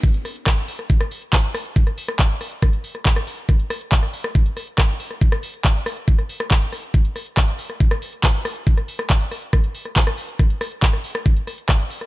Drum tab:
HH |xxoxxxoxxxoxxxox|xxoxxxoxxxoxxxox|xxoxxxoxxxoxxxox|xxoxxxoxxxoxxxox|
CP |----x-------x---|----x-------x---|----x-------x---|----x-------x---|
SD |--r-r--r-r--r-r-|-r-r--r-r--r-r--|r-r--r-r--r-r--r|-r--r-r--r-r--r-|
BD |o---o---o---o---|o---o---o---o---|o---o---o---o---|o---o---o---o---|

HH |xxoxxxoxxxoxxxox|xxoxxxoxxxoxxxox|xxoxxxoxxxoxxxox|
CP |----x-------x---|----x-------x---|----x-------x---|
SD |--r-r--r-r--r-r-|-r-r--r-r--r-r--|r-r--r-r--r-r--r|
BD |o---o---o---o---|o---o---o---o---|o---o---o---o---|